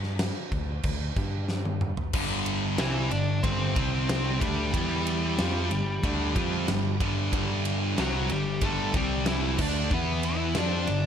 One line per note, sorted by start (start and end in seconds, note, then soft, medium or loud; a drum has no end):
0.00 0.29 G2 medium
0.00 snare soft
0.19 snare loud
0.19 crash medium
0.52 0.77 D2 loud
0.52 kick medium
0.52 crash soft
0.83 1.09 D2 loud
0.83 kick loud
0.83 crash loud
1.16 1.91 G2 loud
1.16 kick medium
1.16 crash medium
1.49 snare medium
1.65 high tom medium
1.81 mid tom loud
1.97 floor tom loud
2.13 2.75 G1 loud
2.13 2.78 G2 medium
2.13 2.78 D3 loud
2.13 2.78 G3 medium
2.13 kick loud
2.13 crash loud
2.46 ride medium
2.78 3.09 C2 medium
2.78 3.11 C3 loud
2.78 3.10 E3 medium
2.78 3.11 G3 medium
2.78 3.11 C4 loud
2.78 3.11 E4 medium
2.78 snare loud
2.78 ride loud
3.11 3.41 G1 medium
3.11 3.38 G2 medium
3.11 3.38 D3 medium
3.11 3.42 D4 medium
3.11 3.42 D5 medium
3.11 ride medium
3.43 3.74 G1 loud
3.43 3.75 G2 medium
3.43 3.75 D3 loud
3.43 3.75 G3 loud
3.43 4.44 C4 loud
3.43 4.37 C5 medium
3.43 kick loud
3.43 ride loud
3.76 4.37 C2 loud
3.76 4.40 C3 medium
3.76 4.40 G3 loud
3.76 4.40 C4 loud
3.76 kick loud
3.76 ride medium
4.09 snare loud
4.09 ride loud
4.40 4.72 D2 loud
4.40 4.72 D3 loud
4.40 6.97 G3 medium
4.40 4.73 A3 loud
4.40 4.73 D4 loud
4.40 6.96 G4 loud
4.40 kick loud
4.40 ride medium
4.73 5.35 E2 loud
4.73 5.37 E3 medium
4.73 5.37 B3 medium
4.73 5.37 E4 loud
4.73 kick loud
4.73 ride loud
5.07 ride medium
5.38 5.69 F2 loud
5.38 5.70 F3 medium
5.38 5.70 C4 medium
5.38 5.70 F4 medium
5.38 snare loud
5.38 ride loud
5.71 6.02 G1 medium
5.71 5.97 G2 medium
5.71 5.97 D3 medium
5.71 ride medium
6.03 6.34 D2 loud
6.03 6.35 D3 loud
6.03 6.35 A3 loud
6.03 6.35 D4 loud
6.03 kick loud
6.03 ride loud
6.36 6.66 F2 loud
6.36 6.67 F3 loud
6.36 6.67 C4 loud
6.36 6.68 F4 loud
6.36 kick loud
6.36 ride medium
6.68 6.99 G1 medium
6.68 6.94 G2 medium
6.68 6.94 D3 medium
6.68 snare loud
6.68 ride loud
7.00 7.31 G1 loud
7.00 7.32 G2 loud
7.00 7.32 D3 loud
7.00 7.32 G3 loud
7.00 kick loud
7.00 ride medium
7.33 7.94 G1 loud
7.33 7.97 G2 medium
7.33 7.96 D3 loud
7.33 7.96 G3 loud
7.33 kick loud
7.33 ride loud
7.65 ride medium
7.97 8.28 C2 loud
7.97 8.29 C3 medium
7.97 8.29 F#3 medium
7.97 8.29 G3 loud
7.97 8.29 C4 loud
7.97 8.32 F#4 loud
7.97 snare loud
7.97 ride loud
8.29 8.61 G1 medium
8.29 8.55 G2 medium
8.29 8.56 D3 medium
8.29 8.61 G3 loud
8.29 8.64 G4 loud
8.29 ride medium
8.61 8.92 G1 loud
8.61 8.94 G2 loud
8.61 8.94 D3 loud
8.61 8.93 G3 loud
8.61 8.94 A3 medium
8.61 8.96 A4 loud
8.61 kick loud
8.61 ride loud
8.94 9.55 C2 loud
8.94 9.58 C3 loud
8.94 9.58 G3 medium
8.94 9.25 G3 medium
8.94 9.59 C4 loud
8.94 9.28 G4 loud
8.94 kick loud
8.94 ride medium
9.26 9.58 E3 medium
9.26 9.61 E4 loud
9.26 snare loud
9.26 ride loud
9.58 9.89 D2 loud
9.58 9.91 D3 loud
9.58 9.90 A3 loud
9.58 9.91 D4 loud
9.58 9.94 D4 loud
9.58 9.91 D5 medium
9.58 kick loud
9.58 crash loud
9.91 10.52 E2 loud
9.91 10.55 E3 loud
9.91 10.56 B3 medium
9.91 10.23 B3 medium
9.91 10.56 E4 loud
9.91 10.23 B4 medium
9.91 kick loud
10.23 10.55 E3 medium
10.23 10.58 E4 medium
10.23 ride medium
10.55 10.86 F2 loud
10.55 10.87 F3 medium
10.55 10.88 C4 loud
10.55 11.06 D4 medium
10.55 10.88 F4 loud
10.55 11.06 D5 medium
10.55 snare loud
10.55 ride loud
10.87 11.06 G1 medium
10.87 11.06 G2 medium
10.87 11.06 D3 medium
10.87 ride medium